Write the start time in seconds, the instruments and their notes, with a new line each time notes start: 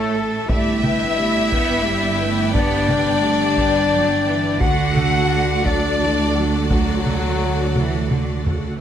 Already playing: double bass section A1, french horn section A3, string section A3 E4 A4 C#5, cello section A3, viola section E4 C#5, violin section A4, flute A4
0.13 viola section A4 E5
0.47 double bass section G1, string section B3 D4 D5 G5, french horn section E4, viola section G4 D5, violin section E5, flute E5, taiko
0.82 viola section B4 G5, taiko mid
1.17 viola section G4 D5
1.51 cello section B3, viola section B4 G5, taiko
1.84 cello section G3, viola section G4 D5
2.19 cello section A3, viola section B4 G5
2.51 cello section B3, french horn section D4, viola section G4 D5, violin section D5
2.55 flute D5, taiko
2.87 cello section G3, viola section B4 G5, taiko mid
3.22 cello section A3, viola section G4 D5
3.57 cello section G3, viola section B4 G5, taiko
3.92 cello section F#3, viola section D5 G5
4.26 cello section E3, viola section B4 G5
4.57 double bass section D2, cello section D3, string section A3 F#4 A4 D5, french horn section F#4, violin section F#5, flute F#5, taiko
4.62 viola section F#4 D5
4.95 viola section A4 F#5, taiko mid
5.31 viola section F#4 D5
5.64 cello section F#3, french horn section D4, viola section A4 F#5, violin section D5, flute D5, taiko
6.00 cello section E3, viola section F#4 D5
6.35 cello section F#3, viola section A4 F#5, taiko rim
6.67 cello section D3, french horn section F#3, flute F#4, viola section F#4 D5, violin section F#4, taiko
7.04 viola section A4 F#5, taiko mid
7.39 viola section F#4 D5
7.75 cello section E3, viola section A4 F#5, taiko mid
8.09 cello section D3, viola section F#4 D5, taiko mid
8.45 cello section C#3, viola section A4 F#5, taiko low